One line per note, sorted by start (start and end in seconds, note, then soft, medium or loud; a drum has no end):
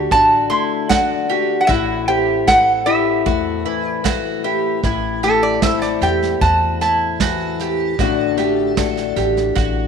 0.00 1.69 D3 medium
0.00 0.12 D4 medium
0.00 1.29 F#4 medium
0.00 0.11 G4 medium
0.00 0.11 B5 loud
0.11 0.48 A1 medium
0.11 0.90 D4 medium
0.11 0.50 F#4 medium
0.11 0.49 A5 loud
0.11 kick medium
0.50 2.47 A3 medium
0.50 0.89 E4 medium
0.50 0.91 C6 medium
0.89 1.64 D4 medium
0.89 1.28 F#4 medium
0.89 1.59 F#5 medium
0.89 kick medium
0.89 snare medium
1.30 1.64 F#4 medium
1.30 1.68 G4 medium
1.61 1.68 F#5 medium
1.67 3.22 A1 medium
1.67 4.82 A2 medium
1.67 2.85 E4 medium
1.67 2.07 F#4 medium
1.67 2.04 E5 loud
1.67 kick medium
2.08 4.79 C4 medium
2.08 2.47 G4 medium
2.08 2.47 G5 medium
2.47 3.25 A3 medium
2.47 2.86 A4 medium
2.47 2.86 F#5 loud
2.47 kick medium
2.47 snare medium
2.86 4.43 E4 medium
2.86 3.25 G4 medium
2.86 3.88 E5 medium
3.26 3.63 E2 medium
3.26 4.04 A3 medium
3.26 3.65 F#4 medium
3.26 kick medium
3.65 4.79 E3 medium
3.65 4.04 E4 medium
3.88 4.40 D5 medium
4.04 4.79 A3 medium
4.04 4.43 F#4 medium
4.04 kick medium
4.04 snare medium
4.44 4.83 E4 medium
4.44 4.83 G4 medium
4.83 5.98 A1 medium
4.83 7.98 A2 medium
4.83 5.63 E4 medium
4.83 5.23 E4 medium
4.83 kick medium
4.83 snare soft
5.23 5.62 A3 medium
5.23 5.62 G4 medium
5.23 5.42 A4 medium
5.23 snare soft
5.43 5.62 D5 medium
5.62 7.94 A3 medium
5.62 7.95 C4 medium
5.62 8.00 E4 medium
5.62 6.01 A4 medium
5.62 5.82 E5 medium
5.62 kick medium
5.62 snare medium
5.82 6.01 D5 medium
5.82 snare soft
6.01 6.39 E2 medium
6.01 6.40 G4 medium
6.01 6.41 G5 medium
6.01 snare soft
6.22 snare soft
6.41 7.95 E2 medium
6.41 6.80 F#4 medium
6.41 6.80 A5 medium
6.41 kick medium
6.41 snare soft
6.81 7.20 E4 medium
6.81 9.14 A5 medium
6.81 snare soft
7.20 7.94 E3 medium
7.20 7.59 F#4 medium
7.20 kick medium
7.20 snare medium
7.59 7.99 G4 medium
7.59 snare soft
7.99 9.13 A1 medium
7.99 9.88 A2 medium
7.99 9.88 D3 medium
7.99 8.36 A3 medium
7.99 8.78 D4 medium
7.99 8.37 F#4 medium
7.99 8.78 F#4 medium
7.99 kick medium
7.99 snare soft
8.38 8.76 A3 medium
8.38 8.77 G4 medium
8.38 snare soft
8.77 9.88 A3 soft
8.77 9.88 D4 medium
8.77 9.88 F#4 medium
8.77 9.16 A4 medium
8.77 kick medium
8.77 snare medium
8.97 snare soft
9.16 9.54 A1 medium
9.16 9.55 G4 medium
9.16 snare soft
9.37 snare soft
9.55 9.88 A1 medium
9.55 9.88 F#4 medium
9.55 kick medium
9.55 snare soft